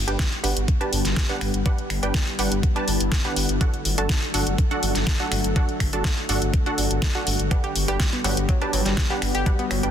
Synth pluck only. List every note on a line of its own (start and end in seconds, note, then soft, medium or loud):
0.08 0.21 D4 medium
0.08 0.21 G4 medium
0.08 0.21 B4 medium
0.08 0.21 G5 medium
0.44 0.58 D4 medium
0.44 0.58 G4 medium
0.44 0.58 B4 medium
0.44 0.58 F#5 medium
0.81 1.03 D4 loud
0.81 1.03 G4 medium
0.81 1.03 B4 medium
0.81 1.03 A5 loud
1.29 1.52 D4 medium
1.29 1.52 G4 medium
1.29 1.52 B4 medium
1.29 1.52 F#5 medium
1.66 1.80 D4 medium
1.66 1.80 G4 medium
1.66 1.80 B4 medium
1.66 1.80 F#5 medium
2.03 2.16 D4 medium
2.03 2.16 G4 medium
2.03 2.16 B4 medium
2.03 2.16 G5 medium
2.39 2.53 D4 medium
2.39 2.53 G4 medium
2.39 2.53 B4 medium
2.39 2.53 F#5 medium
2.76 2.98 D4 medium
2.76 2.98 G4 medium
2.76 2.98 B4 medium
2.76 2.98 A5 loud
3.25 3.47 D4 medium
3.25 3.47 G4 medium
3.25 3.47 B4 medium
3.25 3.47 F#5 medium
3.61 3.75 D4 medium
3.61 3.75 F#4 medium
3.61 3.75 A4 medium
3.61 3.75 F#5 medium
3.98 4.11 D4 medium
3.98 4.11 F#4 medium
3.98 4.11 A4 medium
3.98 4.11 A5 medium
4.34 4.48 D4 medium
4.34 4.48 F#4 medium
4.34 4.48 A4 medium
4.34 4.48 F#5 medium
4.71 4.93 D4 loud
4.71 4.93 F#4 medium
4.71 4.93 A4 medium
4.71 4.93 F#5 loud
5.20 5.42 D4 medium
5.20 5.42 F#4 medium
5.20 5.42 A4 medium
5.20 5.42 F#5 loud
5.56 5.70 D4 medium
5.56 5.70 F#4 medium
5.56 5.70 A4 medium
5.56 5.70 F#5 medium
5.93 6.07 D4 medium
5.93 6.07 F#4 medium
5.93 6.07 A4 medium
5.93 6.07 A5 medium
6.29 6.44 D4 medium
6.29 6.44 F#4 medium
6.29 6.44 A4 medium
6.29 6.44 F#5 medium
6.66 6.88 D4 medium
6.66 6.88 F#4 medium
6.66 6.88 A4 medium
6.66 6.88 F#5 loud
7.15 7.37 D4 medium
7.15 7.37 F#4 medium
7.15 7.37 A4 medium
7.15 7.37 F#5 medium
7.51 7.65 D4 medium
7.51 7.65 G4 medium
7.51 7.65 B4 medium
7.51 7.65 F#5 medium
7.88 8.02 D4 medium
7.88 8.02 G4 medium
7.88 8.02 B4 medium
7.88 8.02 G5 medium
8.24 8.39 D4 medium
8.24 8.39 G4 medium
8.24 8.39 B4 medium
8.24 8.39 F#5 medium
8.62 8.84 D4 loud
8.62 8.84 G4 medium
8.62 8.84 B4 medium
8.62 8.84 A5 loud
9.10 9.32 D4 medium
9.10 9.32 G4 medium
9.10 9.32 B4 medium
9.10 9.32 F#5 medium
9.46 9.61 D4 medium
9.46 9.61 G4 medium
9.46 9.61 B4 medium
9.46 9.61 F#5 medium
9.83 9.91 D4 medium
9.83 9.91 G4 medium
9.83 9.91 B4 medium
9.83 9.91 G5 medium